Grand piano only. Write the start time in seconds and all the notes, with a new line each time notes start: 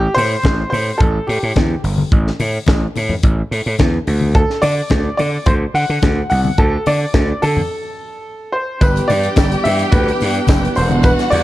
Already playing: G4
0.14 C5
0.70 C5
0.98 A4
1.27 G4
4.35 A4
4.62 D5
5.17 D5
5.46 C5
5.75 F#5
6.30 F#5
6.58 A4
6.87 D5
7.42 A4
8.52 C5
8.81 B4
9.08 D5
9.64 E5
9.92 B4
10.76 C5
11.04 B4
11.30 D5